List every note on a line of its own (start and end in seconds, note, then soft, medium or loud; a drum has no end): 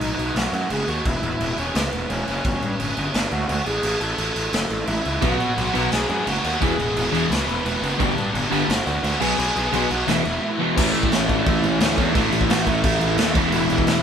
0.00 0.13 B1 medium
0.00 0.33 D#4 medium
0.00 0.39 D#5 medium
0.00 crash medium
0.18 0.30 B1 medium
0.18 crash medium
0.35 0.47 B1 medium
0.35 0.53 F#4 medium
0.35 0.54 F#5 medium
0.35 snare loud
0.35 crash medium
0.52 0.64 F#2 medium
0.52 0.70 F#4 medium
0.52 0.72 F#5 medium
0.52 crash medium
0.70 0.82 F#1 medium
0.70 0.88 G#4 medium
0.70 0.89 G#5 medium
0.70 crash medium
0.88 0.99 D#2 medium
0.88 1.05 F#4 medium
0.88 1.07 F#5 medium
0.88 crash medium
1.05 1.17 E1 medium
1.05 1.55 E4 medium
1.05 1.59 E5 medium
1.05 kick loud
1.05 crash medium
1.22 1.34 E1 medium
1.22 crash medium
1.41 1.52 E1 medium
1.41 crash medium
1.58 1.69 E1 medium
1.58 1.75 C#4 medium
1.58 1.75 C#5 medium
1.58 crash medium
1.75 1.87 C#2 medium
1.75 2.08 B3 medium
1.75 2.10 B4 medium
1.75 snare loud
1.75 crash medium
1.93 2.04 E1 medium
1.93 crash medium
2.10 2.21 E1 medium
2.10 2.26 C#4 medium
2.10 2.26 C#5 medium
2.10 crash medium
2.27 2.39 F#1 medium
2.27 3.10 C#4 medium
2.27 3.15 C#5 medium
2.27 crash medium
2.44 2.56 G1 medium
2.44 kick loud
2.44 crash medium
2.62 2.74 G2 medium
2.62 crash medium
2.80 2.91 G1 medium
2.80 crash medium
2.97 3.09 G1 medium
2.97 crash medium
3.14 3.26 G1 loud
3.14 3.31 D4 medium
3.14 3.33 D5 medium
3.14 snare loud
3.14 crash medium
3.32 3.43 D2 medium
3.32 3.47 F#4 medium
3.32 3.47 F#5 medium
3.32 crash medium
3.48 3.60 D2 medium
3.48 3.65 F#4 medium
3.48 3.66 F#5 medium
3.48 crash medium
3.66 3.77 A1 medium
3.66 3.98 G#4 medium
3.66 4.00 G#5 medium
3.66 crash medium
3.83 3.95 A1 medium
3.83 crash medium
4.01 4.12 A1 medium
4.01 4.84 A4 medium
4.01 4.90 A5 loud
4.01 crash medium
4.18 4.30 A1 medium
4.18 crash medium
4.36 4.47 A1 medium
4.36 crash medium
4.53 4.64 F#1 medium
4.53 snare loud
4.53 crash medium
4.70 4.82 A1 medium
4.70 crash medium
4.87 4.99 A1 medium
4.87 5.05 E4 medium
4.87 5.06 E5 medium
4.87 crash medium
5.05 5.16 C#2 medium
5.05 5.23 E4 medium
5.05 5.24 E5 medium
5.05 crash medium
5.22 5.34 B1 medium
5.22 5.73 B2 medium
5.22 5.74 F#3 medium
5.22 5.74 B3 loud
5.22 5.89 F#4 medium
5.22 5.92 F#5 medium
5.22 kick loud
5.22 crash medium
5.40 5.51 B2 medium
5.40 crash medium
5.58 5.69 B1 loud
5.58 crash medium
5.74 5.86 B1 medium
5.74 6.25 B2 medium
5.74 6.26 F#3 medium
5.74 6.28 B3 medium
5.74 crash medium
5.92 6.04 B1 medium
5.92 6.09 G#4 medium
5.92 6.10 G#5 medium
5.92 snare loud
5.92 crash medium
6.10 6.21 F#2 medium
6.10 6.26 G#4 medium
6.10 6.28 G#5 medium
6.10 crash medium
6.27 6.38 F#1 medium
6.27 6.60 B2 medium
6.27 6.61 F#3 medium
6.27 9.21 B3 medium
6.27 6.43 F#4 medium
6.27 6.45 F#5 medium
6.27 crash medium
6.44 6.55 D#2 medium
6.44 6.61 F#4 medium
6.44 6.62 F#5 medium
6.44 crash medium
6.60 6.73 E1 loud
6.60 7.12 E2 medium
6.60 7.12 B2 medium
6.60 7.11 E3 medium
6.60 7.27 G#4 medium
6.60 7.33 G#5 medium
6.60 kick loud
6.60 crash medium
6.79 6.90 E1 medium
6.79 crash medium
6.96 7.07 E1 loud
6.96 crash medium
7.13 7.24 E1 medium
7.13 7.63 E2 medium
7.13 7.64 B2 medium
7.13 7.64 E3 medium
7.13 crash medium
7.30 7.41 C#2 loud
7.30 7.47 B4 medium
7.30 7.47 B5 medium
7.30 snare loud
7.30 crash medium
7.47 7.58 E1 medium
7.47 7.65 B4 medium
7.47 7.64 B5 loud
7.47 crash medium
7.64 7.76 E1 medium
7.64 7.98 E2 medium
7.64 7.99 B2 medium
7.64 8.00 E3 medium
7.64 7.82 B3 medium
7.64 7.81 B4 loud
7.64 crash medium
7.82 7.94 F#1 medium
7.82 7.99 B3 medium
7.82 8.01 B4 medium
7.82 crash medium
7.99 8.11 G1 loud
7.99 8.50 G2 medium
7.99 8.51 D3 medium
7.99 8.50 G3 loud
7.99 8.66 D4 medium
7.99 8.70 D5 medium
7.99 kick loud
7.99 crash medium
8.16 8.28 G2 medium
8.16 crash medium
8.33 8.45 G1 loud
8.33 crash medium
8.51 8.63 G1 medium
8.51 9.02 G2 medium
8.51 9.03 D3 medium
8.51 9.02 G3 medium
8.51 crash medium
8.68 8.80 G1 loud
8.68 8.85 F#4 medium
8.68 8.85 F#5 medium
8.68 snare loud
8.68 crash medium
8.86 8.98 D2 medium
8.86 9.19 F#4 medium
8.86 9.18 F#5 medium
8.86 crash medium
9.03 9.15 D2 medium
9.03 9.20 G2 medium
9.03 9.19 D3 medium
9.03 9.21 G3 medium
9.03 crash medium
9.20 9.32 B1 medium
9.20 9.71 B2 medium
9.20 9.72 F#3 medium
9.20 9.72 B3 loud
9.20 9.86 G#4 medium
9.20 9.92 G#5 medium
9.20 crash loud
9.39 9.50 B1 loud
9.39 crash medium
9.56 9.67 B1 medium
9.56 crash medium
9.73 9.84 B1 loud
9.73 10.07 B2 medium
9.73 10.07 F#3 medium
9.73 10.08 B3 medium
9.73 crash medium
9.91 10.02 B1 medium
9.91 10.07 F#4 medium
9.91 10.07 F#5 medium
9.91 crash medium
10.07 10.19 E1 loud
10.07 10.58 E2 medium
10.07 10.59 B2 medium
10.07 10.58 E3 loud
10.07 10.56 E4 medium
10.07 10.56 E5 medium
10.07 snare loud
10.07 crash medium
10.25 10.37 E1 medium
10.25 crash medium
10.59 10.77 E2 medium
10.59 10.76 B2 medium
10.59 10.76 E3 medium
10.76 10.93 A1 loud
10.76 11.31 A2 medium
10.76 11.30 E3 medium
10.76 11.29 A3 loud
10.76 10.93 C#4 medium
10.76 10.94 C#5 medium
10.76 kick loud
10.76 crash loud
10.76 crash medium
10.94 11.10 A1 medium
10.94 11.10 E4 medium
10.94 11.11 E5 medium
10.94 crash medium
11.03 kick loud
11.11 11.28 A1 loud
11.11 11.23 C#4 medium
11.11 11.23 C#5 medium
11.11 snare loud
11.11 crash medium
11.24 11.28 C#5 medium
11.28 11.45 A1 loud
11.28 11.80 A2 medium
11.28 11.81 E3 medium
11.28 11.79 A3 medium
11.28 11.45 D4 medium
11.28 11.47 D5 medium
11.28 kick loud
11.28 crash medium
11.46 11.62 A1 loud
11.46 11.63 E4 medium
11.46 11.64 E5 medium
11.46 kick loud
11.46 crash medium
11.63 11.79 A1 loud
11.63 11.80 C#4 medium
11.63 11.80 C#5 medium
11.63 crash medium
11.80 11.96 D2 loud
11.80 12.14 A2 medium
11.80 12.16 E3 medium
11.80 12.15 A3 medium
11.80 12.05 C#4 medium
11.80 12.07 C#5 medium
11.80 snare loud
11.80 crash medium
11.98 12.14 E2 medium
11.98 12.14 A2 medium
11.98 12.16 E3 medium
11.98 12.14 A3 loud
11.98 kick loud
11.98 crash medium
12.07 12.39 D4 medium
12.07 12.42 D5 medium
12.15 12.31 A1 loud
12.15 12.65 A2 medium
12.15 12.67 E3 loud
12.15 12.65 A3 loud
12.15 kick loud
12.15 crash loud
12.32 12.48 A1 medium
12.32 crash medium
12.41 12.50 E4 medium
12.41 12.50 E5 loud
12.41 kick medium
12.49 12.65 A1 loud
12.49 12.67 F#4 medium
12.49 12.67 F#5 loud
12.49 snare loud
12.49 crash loud
12.66 12.82 A1 loud
12.66 13.17 A2 medium
12.66 13.20 E3 medium
12.66 13.17 A3 loud
12.66 12.83 E4 medium
12.66 12.84 E5 loud
12.66 kick medium
12.66 crash medium
12.84 13.00 A1 loud
12.84 13.17 E4 medium
12.84 13.16 E5 medium
12.84 kick loud
12.84 crash loud
13.00 13.16 A1 loud
13.00 crash medium
13.17 13.33 D#2 loud
13.17 13.35 A2 medium
13.17 13.37 E3 medium
13.17 snare loud
13.17 crash loud
13.21 13.36 A3 medium
13.35 13.51 E1 medium
13.35 13.87 E2 loud
13.35 13.87 B2 loud
13.35 13.89 E3 loud
13.35 kick loud
13.35 crash medium
13.52 13.68 E1 loud
13.52 14.03 E4 medium
13.52 14.03 E5 loud
13.52 crash loud
13.69 13.85 E1 loud
13.69 crash medium
13.78 kick loud
13.87 14.03 E1 loud
13.87 14.03 E2 medium
13.87 14.03 B2 medium
13.87 14.03 E3 medium
13.87 snare loud
13.87 crash medium